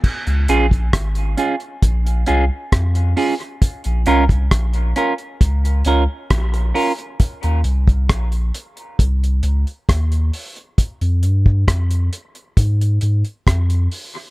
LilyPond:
<<
  \new Staff \with { instrumentName = "Clean electric guitar" } { \time 4/4 \key des \lydian \tempo 4 = 67 r8 <des' f' aes'>8 r8 <des' f' aes'>8 r8 <des' f' aes'>8 r8 <des' f' aes'>8 | r8 <des' f' bes'>8 r8 <des' f' bes'>8 r8 <des' f' bes'>8 r8 <des' f' bes'>8 | r1 | r1 | }
  \new Staff \with { instrumentName = "Sub bass" } { \clef bass \time 4/4 \key des \lydian r16 des,16 bes,,8 aes,,8 r8 bes,,8 c,16 r16 f,8 r8 | r16 bes,,16 c,8 bes,,8 r8 des,8 des,16 r16 bes,,8 r8 | r16 ees,16 c,8 bes,,8 r8 c,8 des,16 r16 ees,8 r8 | r16 f,16 g,8 f,8 r8 aes,8 aes,16 r16 f,8 r8 | }
  \new DrumStaff \with { instrumentName = "Drums" } \drummode { \time 4/4 <cymc bd>16 hh16 hh16 <hh bd>16 <hh bd ss>16 hh16 hh16 hh16 <hh bd>16 hh16 hh8 <hh bd ss>16 hh16 hho16 hh16 | <hh bd>16 hh16 hh16 <hh bd>16 <hh bd ss>16 hh16 hh16 hh16 <hh bd>16 hh16 hh8 <hh bd ss>16 hh16 hho16 hh16 | <hh bd>16 hh16 hh16 <hh bd>16 <hh bd ss>16 hh16 hh16 hh16 <hh bd>16 hh16 hh16 hh16 <hh bd ss>16 hh16 hho16 hh16 | <hh bd>16 hh16 hh16 bd16 <hh bd ss>16 hh16 hh16 hh16 <hh bd>16 hh16 hh16 hh16 <hh bd ss>16 hh16 hho8 | }
>>